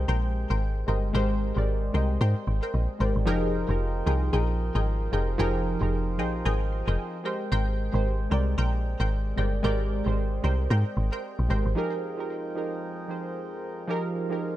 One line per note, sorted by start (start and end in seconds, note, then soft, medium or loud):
0.00 0.87 G#3 loud
0.00 3.23 G#3 medium
0.00 11.73 C4 medium
0.00 0.88 G4 medium
0.00 0.89 A#4 medium
0.00 1.16 C5 loud
0.00 0.84 G5 medium
0.08 0.46 A#1 loud
0.08 0.21 A#4 medium
0.08 0.21 C5 medium
0.08 0.21 G5 loud
0.50 0.84 G#1 medium
0.50 0.59 A#4 medium
0.50 0.59 C5 medium
0.50 0.59 G5 medium
0.87 1.12 G1 loud
0.87 1.09 G#3 medium
0.87 1.10 G4 medium
0.87 1.00 A#4 medium
0.87 1.10 A#4 medium
0.87 7.21 C5 medium
0.87 1.00 C5 medium
0.87 1.11 D#5 medium
0.87 1.00 G5 medium
1.13 1.52 G#1 loud
1.13 1.47 G#3 loud
1.13 1.47 G4 loud
1.13 1.64 A#4 loud
1.13 1.48 A#4 loud
1.13 1.64 C5 medium
1.13 1.48 C5 loud
1.13 1.64 G5 loud
1.55 1.91 G#1 loud
1.55 1.87 G#3 loud
1.55 1.87 G4 medium
1.55 1.88 A#4 medium
1.55 1.88 D5 loud
1.93 2.18 C2 loud
1.93 2.79 G#3 medium
1.93 2.80 G4 medium
1.93 2.06 A#4 medium
1.93 2.80 A#4 medium
1.93 2.07 C5 medium
1.93 2.73 D#5 loud
1.93 2.07 G5 medium
2.21 2.35 G#2 loud
2.21 2.33 A#4 loud
2.21 2.33 C5 medium
2.21 2.33 G5 loud
2.47 2.61 G#1 medium
2.47 2.72 G5 medium
2.63 2.72 A#4 medium
2.63 2.72 C5 medium
2.63 2.72 G5 medium
2.74 2.88 A#1 medium
2.74 3.23 D#5 medium
2.99 3.14 G#1 loud
2.99 3.22 G#3 medium
2.99 3.22 G4 medium
2.99 3.13 A#4 medium
2.99 3.23 A#4 medium
2.99 3.13 C5 medium
2.99 3.23 D5 medium
2.99 3.13 G5 medium
3.16 3.29 G#1 medium
3.26 3.65 F1 loud
3.26 3.59 F3 loud
3.26 7.21 F3 medium
3.26 3.59 D#4 loud
3.26 7.21 D#4 medium
3.26 3.60 G4 loud
3.26 3.76 G#4 medium
3.26 3.60 G#4 loud
3.26 3.77 A#4 medium
3.26 7.21 A#4 medium
3.26 3.61 A#4 loud
3.26 3.77 D#5 medium
3.26 11.73 G5 medium
3.26 3.77 G5 loud
3.68 4.03 F1 loud
3.68 3.99 F3 medium
3.68 4.00 D#4 medium
3.68 4.00 G4 medium
3.68 4.00 G#4 medium
3.68 4.01 A#4 loud
4.05 4.31 C2 loud
4.05 4.92 F3 medium
4.05 4.92 D#4 medium
4.05 4.93 G4 medium
4.05 4.19 G#4 medium
4.05 4.93 G#4 medium
4.05 4.19 A#4 medium
4.05 4.93 A#4 loud
4.05 4.19 D#5 medium
4.05 4.19 G5 medium
4.33 4.71 A#1 loud
4.33 4.45 G#4 medium
4.33 4.45 A#4 medium
4.33 4.46 D#5 medium
4.33 4.46 G5 loud
4.75 5.09 G#1 loud
4.75 4.84 G#4 medium
4.75 4.84 A#4 medium
4.75 4.84 D#5 medium
4.75 4.84 G5 medium
5.12 5.37 F1 medium
5.12 5.34 F3 medium
5.12 5.35 D#4 medium
5.12 5.35 G4 medium
5.12 5.25 G#4 medium
5.12 5.35 G#4 medium
5.12 5.25 A#4 medium
5.12 5.36 A#4 loud
5.12 5.25 D#5 medium
5.12 5.25 G5 medium
5.38 5.77 F1 loud
5.38 5.71 F3 loud
5.38 5.72 D#4 loud
5.38 5.72 G4 loud
5.38 5.89 G#4 loud
5.38 5.73 G#4 loud
5.38 5.89 A#4 medium
5.38 5.73 A#4 loud
5.38 5.89 D#5 medium
5.38 5.89 G5 loud
5.80 6.21 F1 loud
5.80 6.12 F3 medium
5.80 6.12 D#4 medium
5.80 6.12 G4 medium
5.80 6.13 G#4 medium
5.80 6.13 A#4 loud
6.18 6.43 A#1 medium
6.18 7.04 F3 loud
6.18 7.05 D#4 medium
6.18 7.05 G4 medium
6.18 6.31 G#4 medium
6.18 7.05 G#4 medium
6.18 6.31 A#4 medium
6.18 7.06 C5 loud
6.18 6.31 D#5 medium
6.18 6.31 G5 medium
6.45 6.83 G#1 medium
6.45 6.58 G#4 loud
6.45 6.58 A#4 medium
6.45 6.58 D#5 medium
6.45 6.58 G5 loud
6.72 6.97 C6 medium
6.87 6.98 F1 loud
6.87 6.96 G#4 medium
6.87 6.96 A#4 medium
6.87 6.97 D#5 medium
6.87 6.97 G5 medium
6.99 7.23 G#5 medium
7.24 7.78 G#3 loud
7.24 11.73 G#3 medium
7.24 7.78 G4 medium
7.24 7.37 A#4 medium
7.24 7.79 A#4 medium
7.24 7.38 C5 medium
7.24 7.79 C5 loud
7.24 7.50 D#5 medium
7.24 7.38 G5 medium
7.52 7.90 G#1 loud
7.52 8.01 A#4 loud
7.52 8.01 C5 medium
7.52 8.02 G5 loud
7.92 8.28 G#1 loud
7.92 8.24 G#3 loud
7.92 8.25 G4 medium
7.92 8.25 A#4 medium
7.92 8.25 C5 loud
8.30 8.55 C2 loud
8.30 9.17 G#3 medium
8.30 9.17 G4 medium
8.30 8.44 A#4 medium
8.30 9.18 A#4 medium
8.30 8.44 C5 medium
8.30 9.18 D5 loud
8.30 8.44 G5 medium
8.58 8.96 A#1 loud
8.58 8.70 A#4 medium
8.58 8.70 C5 medium
8.58 8.70 G5 loud
9.00 9.34 G#1 medium
9.00 9.09 A#4 medium
9.00 9.09 C5 medium
9.00 9.09 G5 medium
9.36 9.62 G1 medium
9.36 9.59 G#3 medium
9.36 9.60 G4 medium
9.36 9.50 A#4 medium
9.36 9.60 A#4 medium
9.36 9.50 C5 medium
9.36 9.61 D5 medium
9.36 9.50 G5 medium
9.63 10.02 G#1 loud
9.63 9.96 G#3 loud
9.63 9.97 G4 loud
9.63 10.14 A#4 loud
9.63 9.97 A#4 loud
9.63 10.14 C5 medium
9.63 9.98 D5 loud
9.63 10.14 G5 loud
10.05 10.40 G#1 medium
10.05 10.36 G#3 medium
10.05 10.37 G4 medium
10.05 10.37 A#4 medium
10.05 10.38 C5 loud
10.42 10.68 C2 loud
10.42 11.29 G#3 medium
10.42 11.29 G4 medium
10.42 10.56 A#4 medium
10.42 11.30 A#4 medium
10.42 10.56 C5 medium
10.42 11.30 C5 loud
10.42 10.56 G5 medium
10.70 10.84 G#2 loud
10.70 10.83 A#4 medium
10.70 10.83 C5 medium
10.70 10.83 G5 loud
10.97 11.11 G#1 loud
11.12 11.21 A#4 medium
11.12 11.21 C5 medium
11.12 11.21 G5 medium
11.39 11.49 A#1 medium
11.49 11.64 G#1 loud
11.49 11.71 G#3 medium
11.49 11.72 G4 medium
11.49 11.62 A#4 medium
11.49 11.72 A#4 medium
11.49 11.62 C5 medium
11.49 11.73 C5 medium
11.49 11.63 G5 medium
11.66 11.76 G#1 medium
11.75 14.57 F2 medium
11.75 12.09 F3 loud
11.75 14.57 F3 medium
11.75 14.57 G#3 medium
11.75 12.09 D#4 loud
11.75 14.57 D#4 medium
11.75 12.09 G4 medium
11.75 12.10 G#4 loud
11.75 14.57 A#4 medium
11.75 12.10 A#4 loud
11.75 13.87 G5 medium
12.17 12.49 F3 medium
12.17 12.49 D#4 medium
12.17 12.50 G4 medium
12.17 12.50 G#4 medium
12.17 12.50 A#4 loud
12.55 13.00 F3 medium
12.55 13.00 D#4 medium
12.55 13.00 G4 medium
12.55 13.01 G#4 medium
12.55 13.01 A#4 medium
13.08 13.74 F3 medium
13.08 13.74 D#4 medium
13.08 13.75 G4 medium
13.08 13.75 G#4 medium
13.08 13.76 C5 medium
13.88 14.21 F3 loud
13.88 14.21 D#4 loud
13.88 14.22 G4 loud
13.88 14.22 G#4 loud
13.88 14.22 A#4 loud
13.88 14.57 F5 medium
14.29 14.57 F3 medium
14.29 14.57 D#4 medium
14.29 14.57 G4 medium
14.29 14.57 G#4 medium
14.29 14.57 A#4 loud